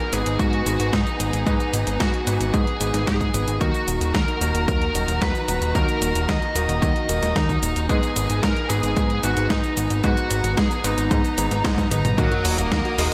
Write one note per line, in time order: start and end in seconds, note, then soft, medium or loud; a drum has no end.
0.00 3.57 B3 medium
0.00 3.57 D#4 medium
0.00 3.57 G#4 medium
0.00 0.13 A#4 medium
0.13 0.24 G#1 medium
0.13 0.63 G#2 medium
0.13 0.63 B3 medium
0.13 0.63 D#4 medium
0.13 0.39 G#4 medium
0.13 0.63 G#4 medium
0.13 0.63 B4 loud
0.13 closed hi-hat medium
0.13 cabasa medium
0.26 0.38 G#1 medium
0.26 closed hi-hat medium
0.26 cabasa soft
0.39 0.63 G#2 medium
0.39 0.65 F#4 medium
0.39 kick loud
0.39 closed hi-hat medium
0.39 cabasa soft
0.53 closed hi-hat soft
0.66 0.78 G#1 loud
0.66 1.43 G#2 medium
0.66 1.43 B3 medium
0.66 1.43 D#4 medium
0.66 0.94 F#4 medium
0.66 1.43 G#4 medium
0.66 1.43 B4 medium
0.66 closed hi-hat medium
0.66 cabasa medium
0.80 0.91 G#1 medium
0.80 closed hi-hat medium
0.80 cabasa soft
0.93 1.05 G#2 loud
0.93 1.45 D#4 medium
0.93 kick loud
0.93 snare loud
0.93 closed hi-hat soft
0.93 cabasa soft
1.07 closed hi-hat soft
1.07 cabasa soft
1.20 1.31 G#1 medium
1.20 closed hi-hat medium
1.20 cabasa medium
1.33 1.45 G#1 loud
1.33 closed hi-hat medium
1.33 cabasa soft
1.46 1.58 G#2 loud
1.46 2.24 G#2 medium
1.46 2.24 B3 medium
1.46 2.24 D#4 medium
1.46 2.02 D#4 medium
1.46 2.24 G#4 medium
1.46 2.24 B4 loud
1.46 kick loud
1.46 closed hi-hat soft
1.46 cabasa soft
1.60 closed hi-hat soft
1.60 cabasa soft
1.73 1.85 G#1 medium
1.73 closed hi-hat medium
1.73 cabasa medium
1.87 1.98 G#1 medium
1.87 closed hi-hat medium
1.87 cabasa soft
2.00 2.12 G#2 medium
2.00 2.54 F#4 medium
2.00 kick loud
2.00 snare loud
2.00 closed hi-hat soft
2.00 cabasa soft
2.14 closed hi-hat soft
2.27 2.39 G#1 medium
2.27 2.77 G#2 medium
2.27 2.77 B3 medium
2.27 2.77 D#4 medium
2.27 2.77 G#4 medium
2.27 2.77 B4 loud
2.27 closed hi-hat medium
2.27 cabasa medium
2.40 2.52 G#1 medium
2.40 closed hi-hat soft
2.40 cabasa soft
2.54 2.65 G#2 loud
2.54 3.06 G#4 medium
2.54 kick loud
2.54 closed hi-hat soft
2.54 cabasa soft
2.67 closed hi-hat soft
2.80 2.92 G#1 medium
2.80 3.31 G#2 medium
2.80 3.31 B3 medium
2.80 3.31 D#4 medium
2.80 3.31 G#4 medium
2.80 3.31 B4 medium
2.80 closed hi-hat medium
2.80 cabasa medium
2.94 3.05 G#1 medium
2.94 snare soft
2.94 closed hi-hat medium
2.94 cabasa soft
3.07 3.30 G#2 medium
3.07 3.57 G#4 medium
3.07 kick loud
3.07 snare loud
3.07 closed hi-hat soft
3.07 cabasa soft
3.21 kick medium
3.21 closed hi-hat soft
3.21 cabasa soft
3.34 3.46 G#1 medium
3.34 3.58 B3 medium
3.34 3.58 D#4 medium
3.34 3.58 G#4 medium
3.34 3.58 B4 medium
3.34 closed hi-hat medium
3.34 cabasa medium
3.47 3.59 G#1 loud
3.47 closed hi-hat soft
3.47 cabasa soft
3.61 3.72 D#2 medium
3.61 4.38 D#3 medium
3.61 7.85 D#3 medium
3.61 4.38 A#3 medium
3.61 4.38 D#4 medium
3.61 12.14 D#4 medium
3.61 4.38 F#4 medium
3.61 7.85 F#4 medium
3.61 4.14 F#4 medium
3.61 4.38 A#4 loud
3.61 7.86 A#5 medium
3.61 kick loud
3.61 closed hi-hat soft
3.61 cabasa soft
3.74 closed hi-hat soft
3.74 cabasa soft
3.88 3.99 D#1 medium
3.88 closed hi-hat medium
3.88 cabasa medium
4.01 4.13 D#1 medium
4.01 closed hi-hat soft
4.01 cabasa soft
4.14 4.26 D#2 medium
4.14 4.64 A#4 medium
4.14 kick loud
4.14 snare loud
4.14 closed hi-hat soft
4.14 cabasa soft
4.28 closed hi-hat soft
4.41 4.53 D#1 medium
4.41 4.92 D#3 medium
4.41 4.92 A#3 medium
4.41 4.92 D#4 medium
4.41 4.92 F#4 medium
4.41 4.92 A#4 loud
4.41 closed hi-hat medium
4.41 cabasa medium
4.54 4.66 D#1 medium
4.54 closed hi-hat soft
4.54 cabasa soft
4.68 4.91 D#2 medium
4.68 5.21 A#4 medium
4.68 kick loud
4.68 closed hi-hat soft
4.68 cabasa soft
4.82 closed hi-hat soft
4.95 5.06 D#1 medium
4.95 5.72 D#3 medium
4.95 5.72 F#3 medium
4.95 5.72 D#4 medium
4.95 5.72 F#4 medium
4.95 5.72 A#5 medium
4.95 closed hi-hat medium
4.95 cabasa medium
5.08 5.20 D#1 medium
5.08 closed hi-hat medium
5.08 cabasa soft
5.22 5.33 D#2 loud
5.22 5.75 B4 loud
5.22 kick loud
5.22 snare loud
5.22 closed hi-hat soft
5.22 cabasa soft
5.35 closed hi-hat soft
5.35 cabasa soft
5.48 5.60 D#1 medium
5.48 closed hi-hat medium
5.48 cabasa medium
5.62 5.73 D#1 loud
5.62 closed hi-hat soft
5.62 cabasa soft
5.75 5.87 D#2 loud
5.75 6.52 D#3 medium
5.75 6.52 A#3 medium
5.75 6.52 D#4 medium
5.75 6.52 F#4 medium
5.75 6.30 A#4 loud
5.75 6.52 A#4 loud
5.75 kick loud
5.75 closed hi-hat soft
5.75 cabasa soft
5.89 closed hi-hat soft
5.89 cabasa soft
6.02 6.13 D#1 medium
6.02 closed hi-hat medium
6.02 cabasa medium
6.15 6.27 D#1 medium
6.15 closed hi-hat soft
6.15 cabasa soft
6.29 6.40 D#2 medium
6.29 6.81 D#5 loud
6.29 kick loud
6.29 snare loud
6.29 closed hi-hat soft
6.29 cabasa soft
6.42 closed hi-hat soft
6.55 6.67 D#1 medium
6.55 7.06 D#3 medium
6.55 7.06 A#3 medium
6.55 7.06 D#4 medium
6.55 7.06 F#4 medium
6.55 7.06 A#4 loud
6.55 closed hi-hat medium
6.55 cabasa medium
6.69 6.80 D#1 medium
6.69 closed hi-hat soft
6.69 cabasa soft
6.82 6.94 D#2 loud
6.82 7.37 D#5 loud
6.82 kick loud
6.82 closed hi-hat soft
6.82 cabasa soft
6.96 closed hi-hat soft
7.09 7.21 D#1 loud
7.09 7.86 D#3 medium
7.09 7.86 A#3 medium
7.09 7.86 D#4 medium
7.09 7.86 F#4 medium
7.09 7.86 A#4 medium
7.09 closed hi-hat medium
7.09 cabasa medium
7.22 7.34 D#1 medium
7.22 snare soft
7.22 closed hi-hat soft
7.22 cabasa soft
7.36 7.59 D#2 loud
7.36 7.86 D#4 medium
7.36 kick loud
7.36 snare loud
7.36 closed hi-hat soft
7.36 cabasa soft
7.49 kick medium
7.49 closed hi-hat soft
7.49 cabasa soft
7.63 7.74 D#1 loud
7.63 closed hi-hat medium
7.63 cabasa medium
7.76 7.88 D#1 medium
7.76 closed hi-hat soft
7.76 cabasa soft
7.89 8.01 G#2 loud
7.89 8.67 G#2 medium
7.89 12.14 B3 medium
7.89 8.67 B3 medium
7.89 8.67 D#4 medium
7.89 10.02 G#4 medium
7.89 8.67 G#4 medium
7.89 8.43 G#4 loud
7.89 8.67 B4 loud
7.89 kick loud
7.89 closed hi-hat soft
7.89 cabasa soft
8.03 closed hi-hat soft
8.03 cabasa soft
8.16 8.28 G#1 medium
8.16 closed hi-hat medium
8.16 cabasa medium
8.30 8.41 G#1 loud
8.30 closed hi-hat soft
8.30 cabasa soft
8.43 8.55 G#2 medium
8.43 8.69 A#4 loud
8.43 kick loud
8.43 snare loud
8.43 closed hi-hat soft
8.43 cabasa soft
8.56 closed hi-hat soft
8.70 8.81 G#1 medium
8.70 9.20 G#2 medium
8.70 9.20 B3 medium
8.70 9.20 D#4 medium
8.70 9.20 G#4 medium
8.70 8.95 G#4 medium
8.70 9.20 B4 loud
8.70 closed hi-hat medium
8.70 cabasa medium
8.83 8.95 G#1 medium
8.83 closed hi-hat soft
8.83 cabasa soft
8.97 9.20 G#2 medium
8.97 9.24 G#4 medium
8.97 kick loud
8.97 closed hi-hat soft
8.97 cabasa soft
9.10 closed hi-hat soft
9.23 9.35 G#1 loud
9.23 10.00 G#2 medium
9.23 10.01 B3 medium
9.23 10.00 D#4 medium
9.23 9.50 F#4 medium
9.23 10.00 G#4 medium
9.23 10.01 B4 medium
9.23 closed hi-hat medium
9.23 cabasa medium
9.37 9.48 G#1 medium
9.37 closed hi-hat medium
9.37 cabasa soft
9.50 9.62 G#2 loud
9.50 10.04 D#4 medium
9.50 kick loud
9.50 snare loud
9.50 closed hi-hat soft
9.50 cabasa soft
9.64 closed hi-hat soft
9.64 cabasa soft
9.77 9.89 G#1 medium
9.77 closed hi-hat medium
9.77 cabasa medium
9.90 10.02 G#1 loud
9.90 closed hi-hat soft
9.90 cabasa soft
10.04 10.15 G#2 loud
10.04 10.81 G#2 medium
10.04 10.81 B3 medium
10.04 10.81 D#4 medium
10.04 10.54 F#4 medium
10.04 10.81 G#4 medium
10.04 10.81 B4 loud
10.04 12.16 A#5 medium
10.04 kick loud
10.04 closed hi-hat medium
10.04 cabasa soft
10.17 closed hi-hat soft
10.17 cabasa soft
10.31 10.42 G#1 medium
10.31 closed hi-hat medium
10.31 cabasa medium
10.44 10.56 G#1 loud
10.44 closed hi-hat medium
10.44 cabasa soft
10.57 10.69 G#2 medium
10.57 10.85 G#4 medium
10.57 kick loud
10.57 snare loud
10.57 closed hi-hat medium
10.57 cabasa soft
10.71 closed hi-hat soft
10.71 cabasa soft
10.84 10.96 G#1 medium
10.84 11.34 G#2 medium
10.84 11.34 B3 medium
10.84 11.34 D#4 medium
10.84 11.88 D#4 medium
10.84 11.34 G#4 medium
10.84 11.34 B4 loud
10.84 closed hi-hat medium
10.84 cabasa medium
10.98 11.09 G#1 medium
10.98 closed hi-hat medium
10.98 cabasa soft
11.11 11.23 G#2 loud
11.11 kick loud
11.11 closed hi-hat medium
11.11 cabasa soft
11.25 closed hi-hat soft
11.25 cabasa soft
11.38 11.49 G#1 medium
11.38 11.88 G#2 medium
11.38 11.88 B3 medium
11.38 11.88 D#4 medium
11.38 11.88 G#4 medium
11.38 11.88 B4 medium
11.38 closed hi-hat medium
11.38 cabasa medium
11.51 11.63 G#1 medium
11.51 snare soft
11.51 closed hi-hat medium
11.51 cabasa soft
11.64 11.88 G#2 loud
11.64 kick loud
11.64 snare loud
11.64 closed hi-hat medium
11.64 cabasa soft
11.78 kick medium
11.78 closed hi-hat soft
11.78 high tom soft
11.78 cabasa soft
11.91 12.03 G#1 medium
11.91 12.15 B3 medium
11.91 12.15 D#4 medium
11.91 12.18 D#4 medium
11.91 12.15 G#4 medium
11.91 12.15 B4 medium
11.91 12.17 D#5 medium
11.91 closed hi-hat medium
11.91 mid tom medium
11.91 cabasa medium
12.05 12.16 G#1 medium
12.05 closed hi-hat medium
12.05 mid tom medium
12.05 cabasa soft
12.18 12.30 D#2 loud
12.18 12.95 D#3 medium
12.18 12.56 F#3 medium
12.18 12.95 A#3 medium
12.18 12.95 D#4 medium
12.18 12.29 D#4 medium
12.18 12.95 F#4 medium
12.18 12.56 F#4 medium
12.18 12.95 A#4 loud
12.18 13.14 A#4 medium
12.18 13.14 D#5 medium
12.18 13.14 F#5 medium
12.18 13.14 D#6 medium
12.18 kick loud
12.18 closed hi-hat medium
12.18 sub drop medium
12.18 cabasa soft
12.31 12.44 F#4 loud
12.31 closed hi-hat soft
12.45 12.56 D#1 medium
12.45 12.51 A#4 medium
12.45 open hi-hat loud
12.45 cabasa medium
12.58 12.70 D#1 loud
12.58 12.96 A#3 medium
12.58 13.00 A#4 medium
12.58 12.69 D#5 medium
12.58 closed hi-hat medium
12.58 cabasa soft
12.71 12.83 D#2 medium
12.71 12.78 D#4 medium
12.71 kick loud
12.71 snare loud
12.71 closed hi-hat medium
12.71 cabasa soft
12.85 12.96 F#4 medium
12.85 closed hi-hat soft
12.98 13.10 D#1 medium
12.98 13.14 D#3 loud
12.98 13.14 G#3 medium
12.98 13.14 A#3 medium
12.98 13.14 D#4 medium
12.98 13.14 F#4 medium
12.98 13.14 G#4 medium
12.98 13.05 A#4 medium
12.98 13.14 A#4 loud
12.98 open hi-hat loud
12.98 cabasa medium